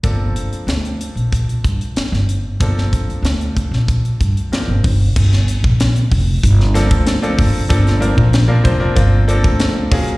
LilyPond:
<<
  \new Staff \with { instrumentName = "Grand piano" } { \time 4/4 \key g \minor \tempo 4 = 94 <f bes c' d' a'>1 | <f bes c' d' a'>2. <f bes c' d' bes'>8 r8 | r2 r8 <f bes c' d' a'>8 r16 <f bes c' d' a'>8 r16 | <f bes c' d' a'>8 <f bes c' d' bes'>8 r16 <f bes c' d' bes'>16 <f bes c' d' c''>16 <f bes c' d' bes'>16 <f bes c' d' f'>8 <f bes c' d' a'>4 <ges bes des' f' aes'>8 | }
  \new Staff \with { instrumentName = "Upright bass" } { \clef bass \time 4/4 \key g \minor g,,8 r8 d,8 r16 bes,,8 r16 g,16 r8 g,,8 r16 | g,,8 r8 d,8 r16 bes,,8 r16 g,16 r8 g,,16 g,,8 | g,,8. bes,,8 r16 f,,8 g,,8. d,8. g,,16 r16 | g,,8. bes,,8 r16 f,,8 g,,8. d,8. ees,16 r16 | }
  \new DrumStaff \with { instrumentName = "Drums" } \drummode { \time 4/4 <hh bd>8 hh16 hh16 <hh sn>16 hh16 hh16 hh16 <hh bd>16 hh16 <hh bd>16 hh16 <hh sn>16 sn16 hh8 | <hh bd>16 sn16 <hh bd>16 hh16 <hh sn>16 hh16 <hh bd>16 sn16 <hh bd>16 hh16 <hh bd>16 hh16 <hh sn>8 <hho bd>8 | <cymc bd>16 <hh sn>16 hh16 bd16 <hh sn>16 hh16 <hho bd>8 <hh bd>16 sn16 <hh sn>16 <hh bd>16 <hh sn>16 hh16 <hho bd>8 | <hh bd>16 <hh sn>16 hh16 bd16 <hh sn>8 <hh bd>8 <hh bd>8 hh16 <hh bd>16 <hh sn>8 <hho bd>16 hh16 | }
>>